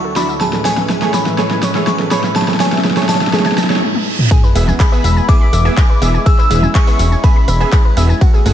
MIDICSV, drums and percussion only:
0, 0, Header, 1, 2, 480
1, 0, Start_track
1, 0, Tempo, 487805
1, 401, Time_signature, 4, 2, 24, 8
1, 8396, End_track
2, 0, Start_track
2, 0, Title_t, "Drums"
2, 160, Note_on_c, 9, 38, 91
2, 160, Note_on_c, 9, 46, 107
2, 166, Note_on_c, 9, 54, 85
2, 258, Note_off_c, 9, 38, 0
2, 258, Note_off_c, 9, 46, 0
2, 264, Note_off_c, 9, 54, 0
2, 288, Note_on_c, 9, 54, 33
2, 386, Note_off_c, 9, 54, 0
2, 401, Note_on_c, 9, 38, 86
2, 407, Note_on_c, 9, 54, 43
2, 499, Note_off_c, 9, 38, 0
2, 505, Note_off_c, 9, 54, 0
2, 522, Note_on_c, 9, 38, 86
2, 528, Note_on_c, 9, 54, 32
2, 620, Note_off_c, 9, 38, 0
2, 627, Note_off_c, 9, 54, 0
2, 641, Note_on_c, 9, 38, 91
2, 641, Note_on_c, 9, 46, 98
2, 648, Note_on_c, 9, 54, 81
2, 740, Note_off_c, 9, 38, 0
2, 740, Note_off_c, 9, 46, 0
2, 746, Note_off_c, 9, 54, 0
2, 763, Note_on_c, 9, 38, 83
2, 769, Note_on_c, 9, 54, 34
2, 861, Note_off_c, 9, 38, 0
2, 867, Note_off_c, 9, 54, 0
2, 881, Note_on_c, 9, 38, 94
2, 887, Note_on_c, 9, 54, 46
2, 980, Note_off_c, 9, 38, 0
2, 986, Note_off_c, 9, 54, 0
2, 1003, Note_on_c, 9, 38, 88
2, 1009, Note_on_c, 9, 54, 34
2, 1101, Note_off_c, 9, 38, 0
2, 1107, Note_off_c, 9, 54, 0
2, 1121, Note_on_c, 9, 38, 92
2, 1121, Note_on_c, 9, 46, 96
2, 1128, Note_on_c, 9, 54, 79
2, 1220, Note_off_c, 9, 38, 0
2, 1220, Note_off_c, 9, 46, 0
2, 1226, Note_off_c, 9, 54, 0
2, 1244, Note_on_c, 9, 38, 86
2, 1250, Note_on_c, 9, 54, 36
2, 1342, Note_off_c, 9, 38, 0
2, 1348, Note_off_c, 9, 54, 0
2, 1362, Note_on_c, 9, 38, 93
2, 1368, Note_on_c, 9, 54, 45
2, 1460, Note_off_c, 9, 38, 0
2, 1466, Note_off_c, 9, 54, 0
2, 1483, Note_on_c, 9, 38, 88
2, 1581, Note_off_c, 9, 38, 0
2, 1601, Note_on_c, 9, 38, 100
2, 1601, Note_on_c, 9, 46, 101
2, 1607, Note_on_c, 9, 54, 83
2, 1699, Note_off_c, 9, 38, 0
2, 1699, Note_off_c, 9, 46, 0
2, 1705, Note_off_c, 9, 54, 0
2, 1723, Note_on_c, 9, 38, 89
2, 1729, Note_on_c, 9, 54, 35
2, 1821, Note_off_c, 9, 38, 0
2, 1828, Note_off_c, 9, 54, 0
2, 1841, Note_on_c, 9, 38, 101
2, 1847, Note_on_c, 9, 54, 47
2, 1939, Note_off_c, 9, 38, 0
2, 1946, Note_off_c, 9, 54, 0
2, 1963, Note_on_c, 9, 38, 86
2, 2061, Note_off_c, 9, 38, 0
2, 2080, Note_on_c, 9, 38, 104
2, 2080, Note_on_c, 9, 46, 109
2, 2087, Note_on_c, 9, 54, 87
2, 2179, Note_off_c, 9, 38, 0
2, 2179, Note_off_c, 9, 46, 0
2, 2185, Note_off_c, 9, 54, 0
2, 2202, Note_on_c, 9, 38, 88
2, 2208, Note_on_c, 9, 54, 35
2, 2301, Note_off_c, 9, 38, 0
2, 2307, Note_off_c, 9, 54, 0
2, 2320, Note_on_c, 9, 38, 99
2, 2327, Note_on_c, 9, 54, 46
2, 2381, Note_off_c, 9, 38, 0
2, 2381, Note_on_c, 9, 38, 89
2, 2425, Note_off_c, 9, 54, 0
2, 2442, Note_off_c, 9, 38, 0
2, 2442, Note_on_c, 9, 38, 92
2, 2448, Note_on_c, 9, 54, 33
2, 2501, Note_off_c, 9, 38, 0
2, 2501, Note_on_c, 9, 38, 91
2, 2547, Note_off_c, 9, 54, 0
2, 2559, Note_off_c, 9, 38, 0
2, 2559, Note_on_c, 9, 38, 104
2, 2559, Note_on_c, 9, 46, 99
2, 2565, Note_on_c, 9, 54, 79
2, 2620, Note_off_c, 9, 38, 0
2, 2620, Note_on_c, 9, 38, 88
2, 2657, Note_off_c, 9, 46, 0
2, 2664, Note_off_c, 9, 54, 0
2, 2681, Note_off_c, 9, 38, 0
2, 2681, Note_on_c, 9, 38, 94
2, 2687, Note_on_c, 9, 54, 37
2, 2740, Note_off_c, 9, 38, 0
2, 2740, Note_on_c, 9, 38, 95
2, 2785, Note_off_c, 9, 54, 0
2, 2800, Note_off_c, 9, 38, 0
2, 2800, Note_on_c, 9, 38, 99
2, 2806, Note_on_c, 9, 54, 48
2, 2861, Note_off_c, 9, 38, 0
2, 2861, Note_on_c, 9, 38, 94
2, 2904, Note_off_c, 9, 54, 0
2, 2921, Note_off_c, 9, 38, 0
2, 2921, Note_on_c, 9, 38, 94
2, 2921, Note_on_c, 9, 46, 62
2, 2928, Note_on_c, 9, 54, 34
2, 2980, Note_off_c, 9, 38, 0
2, 2980, Note_on_c, 9, 38, 97
2, 3020, Note_off_c, 9, 46, 0
2, 3026, Note_off_c, 9, 54, 0
2, 3040, Note_off_c, 9, 38, 0
2, 3040, Note_on_c, 9, 38, 102
2, 3040, Note_on_c, 9, 46, 102
2, 3046, Note_on_c, 9, 54, 84
2, 3101, Note_off_c, 9, 38, 0
2, 3101, Note_on_c, 9, 38, 95
2, 3138, Note_off_c, 9, 46, 0
2, 3144, Note_off_c, 9, 54, 0
2, 3162, Note_off_c, 9, 38, 0
2, 3162, Note_on_c, 9, 38, 97
2, 3169, Note_on_c, 9, 54, 37
2, 3221, Note_off_c, 9, 38, 0
2, 3221, Note_on_c, 9, 38, 101
2, 3267, Note_off_c, 9, 54, 0
2, 3281, Note_off_c, 9, 38, 0
2, 3281, Note_on_c, 9, 38, 102
2, 3288, Note_on_c, 9, 54, 47
2, 3341, Note_off_c, 9, 38, 0
2, 3341, Note_on_c, 9, 38, 93
2, 3386, Note_off_c, 9, 54, 0
2, 3403, Note_off_c, 9, 38, 0
2, 3403, Note_on_c, 9, 38, 99
2, 3409, Note_on_c, 9, 54, 36
2, 3462, Note_off_c, 9, 38, 0
2, 3462, Note_on_c, 9, 38, 97
2, 3507, Note_off_c, 9, 54, 0
2, 3521, Note_off_c, 9, 38, 0
2, 3521, Note_on_c, 9, 38, 109
2, 3521, Note_on_c, 9, 46, 104
2, 3527, Note_on_c, 9, 54, 86
2, 3581, Note_off_c, 9, 38, 0
2, 3581, Note_on_c, 9, 38, 97
2, 3619, Note_off_c, 9, 46, 0
2, 3626, Note_off_c, 9, 54, 0
2, 3642, Note_off_c, 9, 38, 0
2, 3642, Note_on_c, 9, 38, 100
2, 3648, Note_on_c, 9, 54, 38
2, 3702, Note_off_c, 9, 38, 0
2, 3702, Note_on_c, 9, 38, 96
2, 3747, Note_off_c, 9, 54, 0
2, 3761, Note_on_c, 9, 48, 57
2, 3800, Note_off_c, 9, 38, 0
2, 3860, Note_off_c, 9, 48, 0
2, 3883, Note_on_c, 9, 48, 61
2, 3981, Note_off_c, 9, 48, 0
2, 4123, Note_on_c, 9, 45, 88
2, 4222, Note_off_c, 9, 45, 0
2, 4241, Note_on_c, 9, 36, 123
2, 4243, Note_on_c, 9, 51, 69
2, 4249, Note_on_c, 9, 54, 46
2, 4340, Note_off_c, 9, 36, 0
2, 4341, Note_off_c, 9, 51, 0
2, 4347, Note_off_c, 9, 54, 0
2, 4370, Note_on_c, 9, 54, 35
2, 4469, Note_off_c, 9, 54, 0
2, 4483, Note_on_c, 9, 46, 102
2, 4489, Note_on_c, 9, 54, 82
2, 4581, Note_off_c, 9, 46, 0
2, 4587, Note_off_c, 9, 54, 0
2, 4604, Note_on_c, 9, 39, 40
2, 4605, Note_on_c, 9, 63, 66
2, 4610, Note_on_c, 9, 54, 36
2, 4702, Note_off_c, 9, 39, 0
2, 4703, Note_off_c, 9, 63, 0
2, 4708, Note_off_c, 9, 54, 0
2, 4721, Note_on_c, 9, 36, 120
2, 4722, Note_on_c, 9, 39, 123
2, 4723, Note_on_c, 9, 51, 68
2, 4729, Note_on_c, 9, 54, 47
2, 4820, Note_off_c, 9, 36, 0
2, 4821, Note_off_c, 9, 39, 0
2, 4821, Note_off_c, 9, 51, 0
2, 4827, Note_off_c, 9, 54, 0
2, 4850, Note_on_c, 9, 54, 33
2, 4948, Note_off_c, 9, 54, 0
2, 4962, Note_on_c, 9, 46, 103
2, 4968, Note_on_c, 9, 54, 79
2, 5060, Note_off_c, 9, 46, 0
2, 5066, Note_off_c, 9, 54, 0
2, 5090, Note_on_c, 9, 54, 37
2, 5189, Note_off_c, 9, 54, 0
2, 5201, Note_on_c, 9, 36, 127
2, 5202, Note_on_c, 9, 51, 64
2, 5208, Note_on_c, 9, 54, 47
2, 5300, Note_off_c, 9, 36, 0
2, 5300, Note_off_c, 9, 51, 0
2, 5307, Note_off_c, 9, 54, 0
2, 5441, Note_on_c, 9, 56, 82
2, 5442, Note_on_c, 9, 46, 109
2, 5448, Note_on_c, 9, 54, 84
2, 5539, Note_off_c, 9, 56, 0
2, 5541, Note_off_c, 9, 46, 0
2, 5547, Note_off_c, 9, 54, 0
2, 5570, Note_on_c, 9, 54, 36
2, 5668, Note_off_c, 9, 54, 0
2, 5681, Note_on_c, 9, 36, 127
2, 5682, Note_on_c, 9, 39, 120
2, 5682, Note_on_c, 9, 51, 68
2, 5688, Note_on_c, 9, 54, 45
2, 5780, Note_off_c, 9, 36, 0
2, 5781, Note_off_c, 9, 39, 0
2, 5781, Note_off_c, 9, 51, 0
2, 5787, Note_off_c, 9, 54, 0
2, 5922, Note_on_c, 9, 46, 116
2, 5928, Note_on_c, 9, 54, 88
2, 6020, Note_off_c, 9, 46, 0
2, 6026, Note_off_c, 9, 54, 0
2, 6050, Note_on_c, 9, 54, 35
2, 6148, Note_off_c, 9, 54, 0
2, 6161, Note_on_c, 9, 36, 121
2, 6162, Note_on_c, 9, 51, 64
2, 6168, Note_on_c, 9, 54, 48
2, 6260, Note_off_c, 9, 36, 0
2, 6260, Note_off_c, 9, 51, 0
2, 6267, Note_off_c, 9, 54, 0
2, 6284, Note_on_c, 9, 39, 39
2, 6290, Note_on_c, 9, 54, 31
2, 6382, Note_off_c, 9, 39, 0
2, 6388, Note_off_c, 9, 54, 0
2, 6402, Note_on_c, 9, 46, 106
2, 6409, Note_on_c, 9, 54, 80
2, 6501, Note_off_c, 9, 46, 0
2, 6507, Note_off_c, 9, 54, 0
2, 6520, Note_on_c, 9, 63, 71
2, 6530, Note_on_c, 9, 54, 36
2, 6619, Note_off_c, 9, 63, 0
2, 6628, Note_off_c, 9, 54, 0
2, 6641, Note_on_c, 9, 36, 121
2, 6642, Note_on_c, 9, 39, 126
2, 6642, Note_on_c, 9, 51, 67
2, 6648, Note_on_c, 9, 54, 46
2, 6740, Note_off_c, 9, 36, 0
2, 6741, Note_off_c, 9, 39, 0
2, 6741, Note_off_c, 9, 51, 0
2, 6747, Note_off_c, 9, 54, 0
2, 6763, Note_on_c, 9, 46, 67
2, 6770, Note_on_c, 9, 54, 32
2, 6862, Note_off_c, 9, 46, 0
2, 6868, Note_off_c, 9, 54, 0
2, 6882, Note_on_c, 9, 46, 112
2, 6888, Note_on_c, 9, 54, 81
2, 6980, Note_off_c, 9, 46, 0
2, 6986, Note_off_c, 9, 54, 0
2, 7009, Note_on_c, 9, 54, 36
2, 7107, Note_off_c, 9, 54, 0
2, 7121, Note_on_c, 9, 36, 127
2, 7121, Note_on_c, 9, 51, 64
2, 7127, Note_on_c, 9, 54, 44
2, 7219, Note_off_c, 9, 51, 0
2, 7220, Note_off_c, 9, 36, 0
2, 7225, Note_off_c, 9, 54, 0
2, 7360, Note_on_c, 9, 37, 84
2, 7360, Note_on_c, 9, 46, 114
2, 7366, Note_on_c, 9, 54, 85
2, 7458, Note_off_c, 9, 37, 0
2, 7458, Note_off_c, 9, 46, 0
2, 7465, Note_off_c, 9, 54, 0
2, 7489, Note_on_c, 9, 54, 33
2, 7587, Note_off_c, 9, 54, 0
2, 7601, Note_on_c, 9, 36, 127
2, 7601, Note_on_c, 9, 39, 121
2, 7601, Note_on_c, 9, 51, 62
2, 7607, Note_on_c, 9, 54, 46
2, 7699, Note_off_c, 9, 39, 0
2, 7699, Note_off_c, 9, 51, 0
2, 7700, Note_off_c, 9, 36, 0
2, 7706, Note_off_c, 9, 54, 0
2, 7841, Note_on_c, 9, 46, 111
2, 7847, Note_on_c, 9, 54, 85
2, 7940, Note_off_c, 9, 46, 0
2, 7946, Note_off_c, 9, 54, 0
2, 7969, Note_on_c, 9, 54, 36
2, 8068, Note_off_c, 9, 54, 0
2, 8081, Note_on_c, 9, 36, 126
2, 8081, Note_on_c, 9, 51, 63
2, 8088, Note_on_c, 9, 54, 45
2, 8180, Note_off_c, 9, 36, 0
2, 8180, Note_off_c, 9, 51, 0
2, 8186, Note_off_c, 9, 54, 0
2, 8210, Note_on_c, 9, 54, 30
2, 8308, Note_off_c, 9, 54, 0
2, 8322, Note_on_c, 9, 46, 114
2, 8328, Note_on_c, 9, 54, 75
2, 8396, Note_off_c, 9, 46, 0
2, 8396, Note_off_c, 9, 54, 0
2, 8396, End_track
0, 0, End_of_file